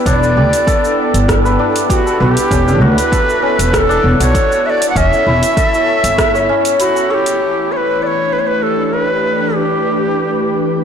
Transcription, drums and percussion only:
0.06 kick, closed hi-hat, cabasa
0.23 cabasa
0.53 closed hi-hat, cabasa
0.67 kick, closed hi-hat, cabasa
0.84 cabasa
1.14 closed hi-hat, cabasa
1.29 kick, cross-stick, closed hi-hat, cabasa
1.46 cabasa
1.76 closed hi-hat, cabasa
1.90 kick, closed hi-hat, cabasa
2.07 cabasa
2.37 closed hi-hat, cabasa
2.51 kick, closed hi-hat, cabasa
2.68 cabasa
2.98 closed hi-hat, cabasa
3.12 kick, closed hi-hat, cabasa
3.29 cabasa
3.59 closed hi-hat, cabasa
3.73 kick, cross-stick, closed hi-hat, cabasa
3.91 cabasa
4.21 closed hi-hat, cabasa
4.35 kick, closed hi-hat, cabasa
4.52 cabasa
4.82 closed hi-hat, cabasa
4.96 kick, closed hi-hat, cabasa
5.13 cabasa
5.43 closed hi-hat, cabasa
5.57 kick, closed hi-hat, cabasa
5.74 cabasa
6.04 closed hi-hat, cabasa
6.18 kick, cross-stick, closed hi-hat, cabasa
6.35 cabasa
6.65 closed hi-hat, cabasa
6.80 closed hi-hat, cabasa
6.97 cabasa
7.26 closed hi-hat, cabasa

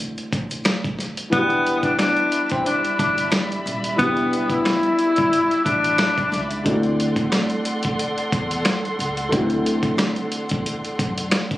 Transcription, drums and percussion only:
0.18 closed hi-hat
0.33 kick, closed hi-hat
0.51 closed hi-hat
0.65 cross-stick, snare, closed hi-hat
0.84 kick, closed hi-hat
0.99 snare, closed hi-hat
1.17 closed hi-hat
1.33 kick, closed hi-hat
1.50 closed hi-hat
1.67 closed hi-hat
1.83 kick, closed hi-hat
1.99 cross-stick, snare, closed hi-hat
2.17 closed hi-hat
2.32 closed hi-hat
2.50 kick, closed hi-hat
2.66 closed hi-hat
2.85 closed hi-hat
2.99 kick, closed hi-hat
3.18 closed hi-hat
3.32 cross-stick, snare, closed hi-hat
3.52 closed hi-hat
3.67 closed hi-hat
3.84 closed hi-hat
3.99 kick, closed hi-hat
4.17 closed hi-hat
4.33 closed hi-hat
4.50 kick, closed hi-hat
4.65 cross-stick, snare, closed hi-hat
4.83 closed hi-hat
4.99 closed hi-hat
5.16 kick, closed hi-hat
5.33 closed hi-hat
5.51 closed hi-hat
5.66 kick, closed hi-hat
5.84 closed hi-hat
5.98 cross-stick, snare, closed hi-hat
6.18 kick, closed hi-hat
6.32 snare, closed hi-hat
6.51 closed hi-hat
6.66 kick, closed hi-hat
6.83 closed hi-hat
7.00 closed hi-hat
7.16 kick, closed hi-hat
7.32 cross-stick, snare, closed hi-hat
7.50 closed hi-hat
7.65 closed hi-hat
7.83 kick, closed hi-hat
7.99 closed hi-hat
8.18 closed hi-hat
8.32 kick, closed hi-hat
8.51 closed hi-hat
8.65 cross-stick, snare, closed hi-hat
8.85 closed hi-hat
9.00 closed hi-hat
9.17 closed hi-hat
9.32 kick, closed hi-hat
9.50 closed hi-hat
9.66 closed hi-hat
9.83 kick, closed hi-hat
9.98 cross-stick, snare, closed hi-hat
10.16 closed hi-hat
10.32 closed hi-hat
10.49 kick, closed hi-hat
10.66 closed hi-hat
10.85 closed hi-hat
10.99 kick, closed hi-hat
11.18 closed hi-hat
11.31 cross-stick, snare, closed hi-hat
11.51 kick, closed hi-hat

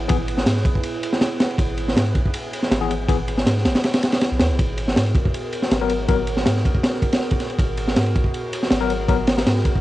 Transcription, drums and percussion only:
0.09 kick, ride
0.28 ride
0.38 snare
0.46 snare, ride
0.56 snare
0.65 kick, ride
0.75 kick
0.83 ride
1.03 ride
1.13 snare
1.21 snare, ride
1.40 snare, ride
1.50 ride
1.58 kick, ride
1.78 ride
1.88 snare
1.97 snare, ride
2.06 ride
2.15 kick, ride
2.26 kick
2.34 ride
2.53 ride
2.63 snare
2.72 snare, ride
2.91 ride
3.09 kick, ride
3.28 ride
3.38 snare
3.46 snare, ride
3.57 snare
3.65 snare, ride
3.75 snare, ride
3.84 snare, ride
3.93 snare, ride
4.03 snare, ride
4.12 snare, ride
4.21 snare, ride
4.39 snare, ride
4.59 kick, ride
4.78 ride
4.88 snare
4.96 snare, ride
5.06 ride
5.15 kick, ride
5.25 kick
5.34 ride
5.53 ride
5.62 snare
5.71 snare, ride
5.90 ride
6.08 kick, ride
6.27 ride
6.37 snare
6.46 snare, ride
6.57 snare
6.65 kick, ride
6.75 kick
6.83 snare, ride
6.94 snare
7.02 kick, ride
7.13 snare, ride
7.21 snare
7.31 kick, ride
7.40 snare, ride
7.50 ride
7.59 kick, ride
7.77 ride
7.88 snare
7.96 snare, ride
8.06 ride
8.16 kick, ride
8.24 kick
8.34 ride
8.53 ride
8.63 snare
8.71 snare, ride
8.90 ride
9.09 kick, ride
9.27 snare, ride
9.38 snare, ride
9.46 snare, ride
9.56 snare
9.65 kick, ride
9.75 kick

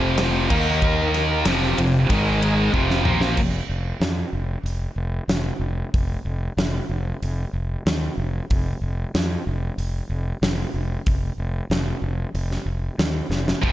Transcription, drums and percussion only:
0.18 snare, ride
0.50 kick, crash
0.82 kick
1.14 snare, ride
1.45 snare, ride
1.62 snare
1.78 ride
2.10 kick, ride
2.42 ride
2.74 kick
2.90 snare
3.05 mid tom
3.21 snare
3.37 kick, crash
4.01 snare, open hi-hat
4.66 open hi-hat
5.29 snare, open hi-hat
5.94 kick, open hi-hat
6.58 snare, open hi-hat
7.23 open hi-hat
7.87 snare, open hi-hat
8.50 kick, open hi-hat
9.15 snare, open hi-hat
9.79 open hi-hat
10.43 snare, open hi-hat
11.06 kick, open hi-hat
11.71 snare, open hi-hat
12.35 open hi-hat
12.51 snare
12.99 snare, open hi-hat
13.31 snare
13.48 snare
13.63 kick, open hi-hat

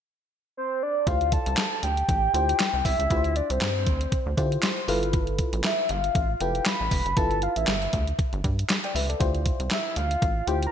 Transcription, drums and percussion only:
1.07 kick, closed hi-hat
1.21 closed hi-hat
1.32 kick, closed hi-hat
1.46 closed hi-hat
1.57 snare, clap, closed hi-hat
1.83 closed hi-hat
1.97 closed hi-hat
2.09 kick, closed hi-hat
2.34 closed hi-hat
2.49 closed hi-hat
2.60 snare, clap, closed hi-hat
2.85 kick, open hi-hat
3.00 closed hi-hat
3.10 kick, closed hi-hat
3.24 closed hi-hat
3.36 closed hi-hat
3.50 closed hi-hat
3.61 snare, clap, closed hi-hat
3.87 kick, closed hi-hat
4.01 closed hi-hat
4.12 kick, closed hi-hat
4.37 kick, closed hi-hat
4.52 closed hi-hat
4.62 snare, clap, closed hi-hat
4.88 open hi-hat
5.03 closed hi-hat
5.13 kick, closed hi-hat
5.27 closed hi-hat
5.39 kick, closed hi-hat
5.53 closed hi-hat
5.64 snare, clap, closed hi-hat
5.89 closed hi-hat
6.04 closed hi-hat
6.15 kick, closed hi-hat
6.41 closed hi-hat
6.55 closed hi-hat
6.65 snare, clap, closed hi-hat
6.91 kick, open hi-hat
7.06 closed hi-hat
7.17 kick, closed hi-hat
7.31 closed hi-hat
7.42 closed hi-hat
7.56 closed hi-hat
7.67 snare, clap, closed hi-hat
7.82 closed hi-hat
7.93 kick, closed hi-hat
8.07 closed hi-hat
8.19 kick, closed hi-hat
8.33 closed hi-hat
8.44 kick, closed hi-hat
8.59 closed hi-hat
8.69 snare, clap, closed hi-hat
8.84 closed hi-hat
8.96 open hi-hat
9.10 closed hi-hat
9.20 kick, closed hi-hat
9.35 closed hi-hat
9.46 kick, closed hi-hat
9.60 closed hi-hat
9.71 snare, clap, closed hi-hat
9.96 closed hi-hat
10.11 closed hi-hat
10.22 kick, closed hi-hat
10.47 closed hi-hat
10.63 closed hi-hat

